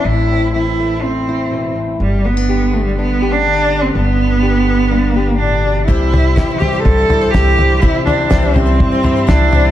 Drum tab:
SD |--------|--------|--------|--o---o-|
FT |--------|--------|--------|oooooooo|
BD |--------|--------|--------|o-o-o-o-|

SD |--o---o-|
FT |oooooooo|
BD |o-o-o-o-|